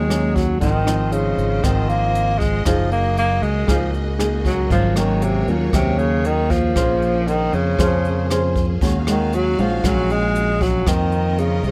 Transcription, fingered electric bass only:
Already playing: D#2
0.62 G#1
1.38 G#1
1.64 G#1
2.66 F#1
3.42 C#2
3.68 C#2
4.70 G#1
5.47 D#2
5.73 D#2
6.76 A#1
7.53 F2
7.79 F2
8.81 D#2
9.59 A#1
9.84 A#1
10.87 F2
11.63 C2

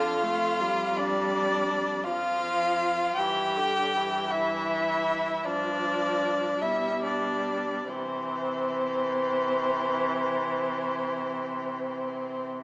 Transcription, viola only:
Already playing: D3
0.23 A3
0.60 G3
2.04 F3
3.17 E3
3.57 D3
3.96 E3
5.45 F3
6.62 G3
7.87 E3

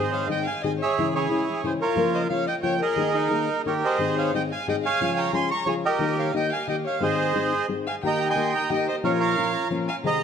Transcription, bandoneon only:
Already playing: G#4 C5 D#5
0.13 F5
0.31 G5
0.47 G#5
0.65 G#5
0.82 G#4 C#5 E5
1.15 E4 G#4 C#5
1.66 C5
1.81 F4 A#4 C#5
2.15 D#5
2.29 F5
2.48 G5
2.63 G5
2.82 G#4 A#4 D#5
3.14 D#4 A#4
3.67 G4 A#4 C#5
3.85 G#4 C5 D#5
4.19 F5
4.35 G5
4.52 G#5
4.69 G5
4.85 C#5 F5 G#5
5.18 A#5
5.35 C6
5.51 C#6
5.66 C#5
5.85 G4 A#4 D#5
6.19 F5
6.36 G5
6.53 G#5
6.69 G5
6.87 F5
7.03 G#4 C5 D#5
7.89 G#5
8.06 D#5 G5 A#5
8.30 D#5 G5 C6
8.55 A#5
8.72 G5
8.89 D#5
9.04 A#4 C#5 F5
9.20 C#5 F5 A#5
9.88 G#5
10.06 D#5 A#5

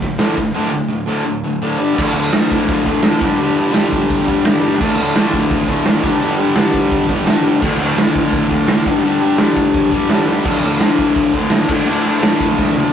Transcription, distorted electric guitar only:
0.02 D2 A2
0.18 D2 A2 D3
0.37 D2 A2
0.54 D2 A2 D3
0.72 D2 A2
0.89 D2 A2
1.07 D2 A2 D3
1.25 D2 A2
1.44 D2 A2
1.62 D2 A2 D3
1.79 G2 D3 G3
1.95 D2 A2 D3
2.14 A2 D3
2.32 D2 A2 D3
2.85 A2 D3
3.03 D2 A2 D3
3.20 G2 D3 G3
3.37 G2 D3 G3
3.55 D3 G3
3.71 G2 D3 G3
4.25 D3 G3
4.43 G2 D3 G3
4.61 D3 G3
4.78 D2 A2 D3
4.98 A2 D3
5.16 D2 A2 D3
5.68 A2 D3
5.84 D2 A2 D3
6.02 G2 D3 G3
6.19 G2 D3 G3
6.36 D3 G3
6.54 G2 D3 G3
7.08 D3 G3
7.25 G2 D3 G3
7.42 D3 G3
7.61 D2 A2 D3
7.79 A2 D3
7.95 D2 A2 D3
8.50 A2 D3
8.67 D2 A2 D3
8.85 G2 D3 G3
9.03 G2 D3 G3
9.21 D3 G3
9.37 G2 D3 G3
9.92 D3 G3
10.09 G2 D3 G3
10.27 D3 G3
10.44 D2 A2 D3
10.64 A2 D3
10.79 D2 A2 D3
11.34 A2 D3
11.50 D2 A2 D3
11.68 D2 A2 D3
11.86 D2 A2 D3
12.04 A2 D3
12.21 D2 A2 D3
12.72 A2 D3

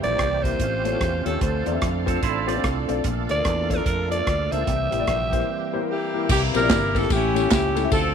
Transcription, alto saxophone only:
0.03 D5
0.43 C5
1.26 A4
1.43 C5
3.31 D5
3.71 A#4
3.86 A#4
4.11 D5
4.51 E5

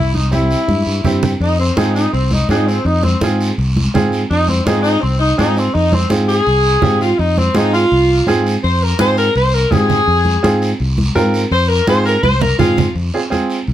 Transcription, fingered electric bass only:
Already playing: C2
0.68 G2
0.87 G2
1.04 G2
1.40 F2
1.77 G#2
2.13 C2
2.49 G#2
2.85 F2
3.21 G#2
3.58 C2
3.94 G#2
4.30 F2
4.67 G#2
5.03 C2
5.39 G#2
5.75 F2
6.11 G#2
6.47 C2
6.83 G#2
7.19 F2
7.55 G#2
7.92 C2
8.27 G#2
8.64 F2
9.00 G#2
9.35 C2
9.71 G#2
10.07 F2
10.44 G#2
10.80 C2
11.16 G#2
11.51 F2
11.88 G#2
12.23 C2
12.59 G#2
12.95 F2
13.68 C2

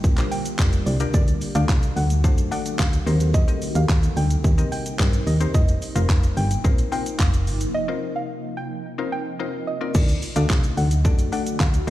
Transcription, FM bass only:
0.04 A#1
0.59 F1
0.86 C2
1.14 D2
1.55 D2
1.69 C2
1.96 D2
2.24 F#2
2.79 D2
3.06 D#2
3.75 D#2
3.89 D#2
4.17 D2
4.44 D#2
4.99 G2
5.27 D#2
5.54 F1
5.96 F1
6.09 F1
6.37 G1
6.65 A#1
7.20 F1
7.47 G1
9.95 D2
10.36 D2
10.50 C2
10.77 D2
11.05 F#2
11.60 D2

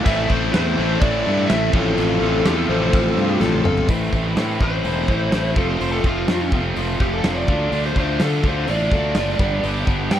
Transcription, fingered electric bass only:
0.06 A1
0.30 A1
0.54 E2
0.78 A1
1.01 A1
1.26 G2
1.50 A1
1.73 A1
1.98 A1
2.22 A1
2.45 E2
2.69 A1
2.93 A1
3.16 G2
3.40 A1
3.65 G1
3.89 A1
4.13 A1
4.37 A2
4.60 A1
4.84 E1
5.09 A1
5.33 A1
5.56 F1
5.81 F1
6.04 F1
6.29 F2
6.52 F1
6.77 F1
7.00 F1
7.24 F1
7.48 D2
7.72 D2
7.96 D2
8.20 D3
8.44 D2
8.68 A1
8.92 D2
9.15 F#1
9.39 G1
9.63 G1
9.87 G1
10.11 G2

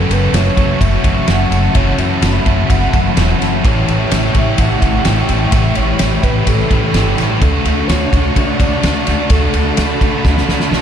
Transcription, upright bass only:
0.10 F#1
0.33 F#1
0.57 F#1
0.81 F#1
1.04 F#1
1.28 F#1
1.51 F#1
1.75 F#1
1.98 F#1
2.22 F#1
2.46 F#1
2.70 F#1
2.93 F#1
3.17 E1
3.41 F#1
3.64 A1
3.88 A1
4.12 A1
4.35 A1
4.58 A1
4.82 A1
5.05 A1
5.29 A1
5.52 A1
5.76 A1
6.00 A1
6.23 A1
6.47 A1
6.71 A1
6.94 G1
7.17 A1
7.42 D2
7.65 D2
7.88 D2
8.12 D2
8.36 D2
8.59 D2
8.83 D2
9.07 D2
9.30 D2
9.53 D2
9.77 D2
10.01 D2
10.25 D2
10.48 D2
10.71 B1

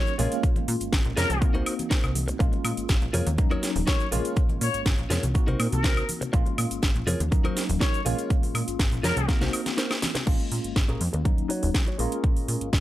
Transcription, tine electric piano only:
Already playing: F#3 A#3 C#4 D#4
0.18 G#3 A#3 C#4 F4
1.41 A#3 C4 D#4 F#4
2.39 G#3 A#3 C#4 F4
3.38 F#3 A#3 C#4 D#4
4.11 G#3 A#3 C#4 F4
5.34 A#3 C4 D#4 F#4
6.33 G#3 A#3 C#4 F4
7.31 F#3 A#3 C#4 D#4
8.05 G#3 A#3 C#4 F4
9.28 A#3 C4 D#4 F#4
10.26 G#3 A#3 C#4 F4
11.25 F#3 A#3 C#4 D#4
11.98 G#3 A#3 C#4 F4

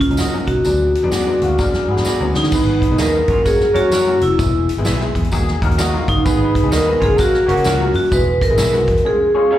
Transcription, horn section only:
2.53 B3 D#4 G#4 B4
2.99 A#3 D#4 F#4 A#4
3.29 G#3 C#4 F4 G#4
3.44 A#3 C#4 F#4 A#4
3.74 C#4 F#4 A#4 C#5
6.25 B3 D#4 G#4 B4
6.72 A#3 D#4 F#4 A#4
7.00 G#3 C#4 F4 G#4
7.18 A#3 C#4 F#4 A#4
7.47 F#3 A#3 C#4 F#4

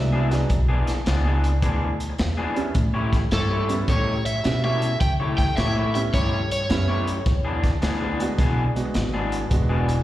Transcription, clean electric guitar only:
0.12 E3 B3 D4 G#4
0.40 muted clean electric guitar stroke
0.68 E3 B3 D4 G#4
1.06 E3 B3 D4 G#4
1.25 E3 B3 D4 G#4
1.62 E3 B3 D4 G#4
2.09 muted clean electric guitar stroke
2.19 muted clean electric guitar stroke
2.37 E3 B3 D4 G#4
2.65 muted clean electric guitar stroke
2.94 A3 E4 G4 C#5
3.32 A3 E4 G4 C#5
3.50 A3 E4 G4 C#5
3.88 A3 E4 G4 C#5
4.35 muted clean electric guitar stroke
4.45 muted clean electric guitar stroke
4.64 A3 E4 G4 C#5
4.92 muted clean electric guitar stroke
5.20 A3 E4 G4 C#5
5.57 A3 E4 G4 C#5
5.76 A3 E4 G4 C#5
6.13 A3 E4 G4 C#5
6.61 muted clean electric guitar stroke
6.70 muted clean electric guitar stroke
6.88 A3 E4 G4 C#5
7.17 muted clean electric guitar stroke
7.45 E3 B3 D4 G#4
7.82 E3 B3 D4 G#4
8.00 E3 B3 D4 G#4
8.38 E3 B3 D4 G#4
8.85 muted clean electric guitar stroke
8.95 muted clean electric guitar stroke
9.14 E3 B3 D4 G#4
9.42 muted clean electric guitar stroke
9.69 E3 B3 D4 G#4

